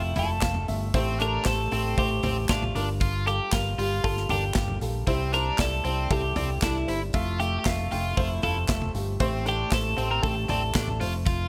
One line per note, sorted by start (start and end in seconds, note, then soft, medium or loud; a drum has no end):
0.00 0.12 F1 loud
0.00 0.17 A3 medium
0.00 0.16 E4 loud
0.00 0.17 F4 medium
0.00 0.17 E5 medium
0.00 0.96 G5 loud
0.16 0.38 F1 medium
0.16 0.38 A3 medium
0.16 0.29 E4 medium
0.16 0.38 F4 medium
0.16 0.66 A4 loud
0.16 0.38 E5 medium
0.16 floor tom medium
0.16 hi-hat pedal medium
0.16 open hi-hat medium
0.16 tambourine soft
0.41 0.64 F1 medium
0.41 0.64 A3 medium
0.41 0.64 F4 medium
0.41 0.64 F5 medium
0.41 kick loud
0.41 snare loud
0.41 clap medium
0.41 hi-hat pedal medium
0.41 open hi-hat medium
0.41 tambourine medium
0.55 floor tom medium
0.68 0.90 G1 loud
0.68 0.89 A3 medium
0.68 0.89 F4 medium
0.68 0.89 E5 medium
0.68 hi-hat pedal medium
0.68 open hi-hat medium
0.68 tambourine soft
0.94 1.37 A1 loud
0.94 1.68 A2 medium
0.94 1.15 A3 loud
0.94 1.19 C4 loud
0.94 1.15 G4 loud
0.94 1.15 C5 loud
0.94 kick loud
0.94 hi-hat pedal medium
0.94 open hi-hat medium
0.94 tambourine soft
1.20 1.41 A3 medium
1.20 1.44 D4 medium
1.20 1.41 G4 medium
1.20 1.42 A4 medium
1.20 1.45 A#4 loud
1.20 hi-hat pedal medium
1.20 open hi-hat medium
1.20 tambourine medium
1.45 1.67 A1 medium
1.45 1.67 A3 medium
1.45 1.67 G4 medium
1.45 1.98 A4 loud
1.45 1.67 C5 medium
1.45 kick loud
1.45 snare loud
1.45 clap medium
1.45 hi-hat pedal medium
1.45 open hi-hat medium
1.45 tambourine medium
1.71 1.93 A1 medium
1.71 1.93 A3 medium
1.71 2.08 C4 medium
1.71 1.93 G4 medium
1.71 1.93 A4 medium
1.71 hi-hat pedal medium
1.71 open hi-hat medium
1.71 tambourine soft
1.98 2.19 A1 loud
1.98 2.19 A3 medium
1.98 2.19 G4 medium
1.98 2.50 G4 medium
1.98 2.19 C5 loud
1.98 kick loud
1.98 hi-hat pedal medium
1.98 open hi-hat medium
2.23 2.45 A1 loud
2.23 2.44 A3 medium
2.23 2.36 C4 medium
2.23 2.44 G4 medium
2.23 2.44 C5 medium
2.23 floor tom medium
2.23 hi-hat pedal medium
2.23 open hi-hat medium
2.23 tambourine soft
2.48 2.70 A1 medium
2.48 2.70 A3 medium
2.48 2.62 D4 medium
2.48 2.86 F4 medium
2.48 2.70 G4 medium
2.48 2.70 D5 medium
2.48 kick loud
2.48 snare loud
2.48 clap medium
2.48 hi-hat pedal medium
2.48 open hi-hat medium
2.48 tambourine medium
2.62 floor tom medium
2.75 3.39 G1 loud
2.75 3.49 G2 medium
2.75 3.17 G3 medium
2.75 2.88 D4 medium
2.75 3.17 F4 medium
2.75 3.17 A#4 medium
2.75 hi-hat pedal medium
2.75 open hi-hat medium
2.75 tambourine soft
3.00 3.25 F4 loud
3.00 kick loud
3.00 hi-hat pedal medium
3.00 open hi-hat medium
3.00 tambourine soft
3.26 3.48 G3 medium
3.26 3.48 F4 medium
3.26 3.51 G4 medium
3.26 3.52 G4 loud
3.26 3.48 A4 medium
3.26 hi-hat pedal medium
3.26 open hi-hat medium
3.26 tambourine medium
3.52 3.74 G1 loud
3.52 3.74 G3 medium
3.52 4.03 F4 loud
3.52 3.74 F4 medium
3.52 3.74 A#4 medium
3.52 kick loud
3.52 snare medium
3.52 clap medium
3.52 hi-hat pedal medium
3.52 open hi-hat medium
3.52 tambourine medium
3.78 3.99 G1 medium
3.78 3.99 G3 medium
3.78 3.99 F4 medium
3.78 4.15 F4 medium
3.78 3.99 G4 medium
3.78 hi-hat pedal medium
3.78 open hi-hat medium
3.78 tambourine soft
4.04 4.25 G1 loud
4.04 4.25 G3 medium
4.04 4.25 F4 medium
4.04 4.28 F4 medium
4.04 4.25 A4 loud
4.04 kick loud
4.04 hi-hat pedal medium
4.04 open hi-hat medium
4.17 snare soft
4.29 4.51 G1 loud
4.29 4.51 G3 medium
4.29 4.42 D4 medium
4.29 4.51 F4 medium
4.29 4.78 G4 medium
4.29 4.51 A#4 medium
4.29 floor tom medium
4.29 hi-hat pedal medium
4.29 open hi-hat medium
4.29 tambourine soft
4.54 4.77 G1 medium
4.54 4.77 G3 medium
4.54 4.77 F4 medium
4.54 4.77 G4 medium
4.54 kick loud
4.54 snare loud
4.54 clap medium
4.54 hi-hat pedal medium
4.54 open hi-hat medium
4.54 tambourine medium
4.68 floor tom medium
4.81 5.02 A#1 medium
4.81 5.03 G3 medium
4.81 5.03 F4 medium
4.81 5.03 A4 medium
4.81 hi-hat pedal medium
4.81 open hi-hat medium
4.81 tambourine medium
5.07 5.50 C2 medium
5.07 5.81 C3 medium
5.07 5.28 G3 loud
5.07 5.32 C4 loud
5.07 5.28 E4 loud
5.07 5.28 C5 loud
5.07 kick medium
5.07 hi-hat pedal medium
5.07 open hi-hat medium
5.07 tambourine soft
5.33 5.54 G3 medium
5.33 5.58 D4 medium
5.33 5.54 E4 medium
5.33 5.58 A#4 loud
5.33 5.54 C5 medium
5.33 hi-hat pedal medium
5.33 open hi-hat medium
5.33 tambourine soft
5.58 5.80 C2 medium
5.58 5.80 G3 medium
5.58 5.80 E4 medium
5.58 6.08 A4 loud
5.58 5.80 D5 medium
5.58 kick loud
5.58 snare medium
5.58 clap medium
5.58 hi-hat pedal medium
5.58 open hi-hat medium
5.58 tambourine medium
5.84 6.06 C2 medium
5.84 6.06 G3 medium
5.84 6.21 C4 medium
5.84 6.06 E4 medium
5.84 6.06 C5 medium
5.84 hi-hat pedal medium
5.84 open hi-hat medium
6.10 6.32 C2 loud
6.10 6.32 G3 loud
6.10 6.32 E4 medium
6.10 6.63 G4 medium
6.10 6.32 A4 loud
6.10 kick loud
6.10 hi-hat pedal medium
6.10 open hi-hat medium
6.10 tambourine soft
6.36 6.57 C2 loud
6.36 6.57 G3 medium
6.36 6.49 C4 medium
6.36 6.57 E4 medium
6.36 6.57 D5 medium
6.36 floor tom medium
6.36 hi-hat pedal medium
6.36 open hi-hat medium
6.36 tambourine soft
6.62 6.84 C2 loud
6.62 6.83 G3 medium
6.62 6.75 D4 medium
6.62 6.83 E4 medium
6.62 6.99 E4 medium
6.62 6.83 A4 medium
6.62 kick loud
6.62 snare loud
6.62 clap medium
6.62 hi-hat pedal medium
6.62 open hi-hat medium
6.62 tambourine medium
6.87 7.09 G1 medium
6.87 7.09 G3 medium
6.87 7.09 E4 medium
6.87 7.01 E4 medium
6.87 7.09 C5 medium
6.87 hi-hat pedal medium
6.87 open hi-hat medium
6.87 tambourine medium
7.13 7.56 F1 medium
7.13 7.35 A3 loud
7.13 7.35 F4 medium
7.13 7.39 F4 loud
7.13 7.35 E5 loud
7.13 kick loud
7.13 hi-hat pedal medium
7.13 open hi-hat medium
7.13 tambourine soft
7.40 7.61 A3 medium
7.40 7.61 F4 medium
7.40 7.57 G4 medium
7.40 7.65 G4 medium
7.40 7.61 E5 medium
7.40 hi-hat pedal medium
7.40 open hi-hat medium
7.40 tambourine medium
7.59 7.66 G4 medium
7.65 7.87 F1 medium
7.65 7.87 A3 medium
7.65 8.19 F4 medium
7.65 7.87 F4 medium
7.65 7.87 E5 medium
7.65 kick medium
7.65 snare loud
7.65 clap medium
7.65 hi-hat pedal medium
7.65 open hi-hat medium
7.65 tambourine medium
7.91 8.12 F1 medium
7.91 8.13 A3 medium
7.91 8.28 F4 medium
7.91 8.13 F4 medium
7.91 8.12 G5 medium
7.91 hi-hat pedal medium
7.91 open hi-hat medium
7.91 tambourine soft
8.17 8.38 F1 medium
8.17 8.38 A3 loud
8.17 8.43 E4 medium
8.17 8.38 F4 medium
8.17 8.38 C5 loud
8.17 kick loud
8.17 hi-hat pedal medium
8.17 open hi-hat medium
8.42 8.64 F1 medium
8.42 8.64 A3 medium
8.42 8.55 E4 medium
8.42 8.64 F4 medium
8.42 8.91 A4 loud
8.42 8.64 F5 medium
8.42 floor tom medium
8.42 hi-hat pedal medium
8.42 open hi-hat medium
8.42 tambourine soft
8.68 8.90 F1 medium
8.68 8.90 A3 medium
8.68 8.90 F4 medium
8.68 8.90 E5 medium
8.68 kick loud
8.68 snare loud
8.68 clap medium
8.68 hi-hat pedal medium
8.68 open hi-hat medium
8.68 tambourine medium
8.82 floor tom medium
8.94 9.16 G1 loud
8.94 9.16 A3 medium
8.94 9.16 F4 medium
8.94 9.16 G4 medium
8.94 hi-hat pedal medium
8.94 open hi-hat medium
8.94 tambourine soft
9.20 9.63 A1 loud
9.20 9.94 A2 medium
9.20 9.41 A3 loud
9.20 9.45 C4 loud
9.20 9.41 G4 medium
9.20 9.41 C5 loud
9.20 kick loud
9.20 hi-hat pedal medium
9.20 open hi-hat medium
9.20 tambourine medium
9.46 9.67 A3 medium
9.46 9.71 D4 medium
9.46 9.67 G4 medium
9.46 9.71 G4 medium
9.46 9.67 A4 medium
9.46 hi-hat pedal medium
9.46 open hi-hat medium
9.46 tambourine medium
9.71 9.93 A1 loud
9.71 9.93 A3 medium
9.71 9.93 G4 medium
9.71 10.11 A4 medium
9.71 9.93 C5 medium
9.71 kick loud
9.71 snare medium
9.71 clap medium
9.71 hi-hat pedal medium
9.71 open hi-hat medium
9.71 tambourine medium
9.97 10.19 A1 medium
9.97 10.18 A3 medium
9.97 10.34 C4 medium
9.97 10.19 G4 medium
9.97 10.19 C5 medium
9.97 hi-hat pedal medium
9.97 open hi-hat medium
9.97 tambourine soft
10.11 10.23 A#4 loud
10.23 10.45 A1 loud
10.23 10.44 A3 medium
10.23 10.44 G4 medium
10.23 10.44 A4 loud
10.23 10.48 A4 loud
10.23 kick loud
10.23 hi-hat pedal medium
10.23 open hi-hat medium
10.23 tambourine soft
10.48 10.70 A1 loud
10.48 10.70 A3 medium
10.48 10.61 C4 medium
10.48 10.70 G4 medium
10.48 10.98 A4 medium
10.48 10.70 D5 medium
10.48 floor tom medium
10.48 hi-hat pedal medium
10.48 open hi-hat medium
10.48 tambourine medium
10.74 11.02 A1 medium
10.74 10.96 A3 medium
10.74 10.87 D4 medium
10.74 10.96 G4 medium
10.74 10.96 A4 medium
10.74 kick loud
10.74 snare loud
10.74 clap medium
10.74 hi-hat pedal medium
10.74 open hi-hat medium
10.74 tambourine medium
10.88 floor tom medium
11.00 11.48 F1 loud
11.00 11.43 A3 medium
11.00 11.13 F4 medium
11.00 11.43 F4 medium
11.00 11.43 C5 medium
11.00 hi-hat pedal medium
11.00 open hi-hat medium
11.00 tambourine medium
11.25 11.48 F4 loud
11.25 kick loud
11.25 hi-hat pedal medium
11.25 open hi-hat medium
11.25 tambourine soft